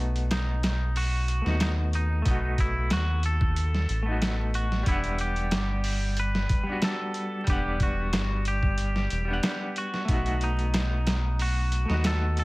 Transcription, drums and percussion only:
0.16 closed hi-hat soft
0.31 snare loud
0.31 closed hi-hat medium
0.63 snare loud
0.63 closed hi-hat medium
0.96 open hi-hat medium
1.28 closed hi-hat medium
1.46 snare soft
1.60 snare loud
1.60 closed hi-hat medium
1.93 closed hi-hat medium
2.26 kick medium
2.26 closed hi-hat medium
2.58 kick medium
2.58 closed hi-hat medium
2.90 snare loud
2.90 closed hi-hat medium
3.23 closed hi-hat medium
3.41 kick medium
3.56 closed hi-hat medium
3.74 snare soft
3.89 closed hi-hat medium
4.22 snare loud
4.22 closed hi-hat medium
4.54 closed hi-hat medium
4.72 snare soft
4.86 kick medium
4.86 closed hi-hat medium
5.04 closed hi-hat soft
5.19 closed hi-hat medium
5.36 closed hi-hat soft
5.51 snare loud
5.51 closed hi-hat medium
5.84 open hi-hat medium
6.17 closed hi-hat medium
6.35 snare medium
6.49 kick medium
6.49 closed hi-hat medium
6.82 snare loud
6.82 closed hi-hat medium
7.14 closed hi-hat medium
7.47 kick loud
7.47 closed hi-hat medium
7.80 kick medium
7.80 closed hi-hat medium
8.13 snare loud
8.13 closed hi-hat medium
8.45 closed hi-hat medium
8.63 kick medium
8.78 closed hi-hat medium
8.96 snare soft
9.10 closed hi-hat medium
9.43 snare loud
9.43 closed hi-hat medium
9.76 closed hi-hat medium
9.94 snare soft
10.08 kick loud
10.08 closed hi-hat medium
10.26 closed hi-hat soft
10.41 closed hi-hat medium
10.59 closed hi-hat soft
10.74 snare loud
10.74 closed hi-hat medium
11.07 snare loud
11.07 closed hi-hat medium
11.39 open hi-hat medium
11.72 closed hi-hat medium
11.90 snare soft
12.04 snare loud
12.04 closed hi-hat medium
12.37 closed hi-hat medium

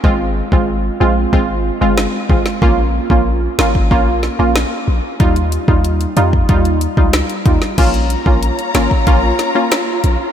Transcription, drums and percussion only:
0.04 kick loud
0.52 kick medium
1.33 kick medium
1.98 cross-stick loud
1.98 snare loud
2.30 kick loud
2.46 snare medium
2.62 kick loud
3.10 kick medium
3.59 snare loud
3.75 kick medium
3.91 kick medium
4.23 snare medium
4.56 cross-stick medium
4.56 snare loud
5.20 kick loud
5.20 closed hi-hat medium
5.36 closed hi-hat medium
5.52 closed hi-hat medium
5.68 kick medium
5.84 closed hi-hat medium
6.01 closed hi-hat medium
6.17 closed hi-hat medium
6.33 kick medium
6.49 kick medium
6.49 closed hi-hat medium
6.65 closed hi-hat medium
6.81 closed hi-hat medium
6.97 kick medium
7.13 cross-stick medium
7.13 snare loud
7.13 closed hi-hat medium
7.30 closed hi-hat medium
7.46 kick loud
7.46 closed hi-hat medium
7.62 snare medium
7.78 kick loud
7.78 closed hi-hat medium
7.78 crash medium
7.94 closed hi-hat medium
8.10 closed hi-hat medium
8.26 kick medium
8.43 closed hi-hat medium
8.59 closed hi-hat medium
8.75 snare loud
8.75 closed hi-hat medium
8.91 kick medium
9.07 kick medium
9.07 closed hi-hat medium
9.39 snare medium
9.39 closed hi-hat medium
9.71 cross-stick loud
9.71 snare loud
9.71 closed hi-hat medium
10.04 closed hi-hat medium

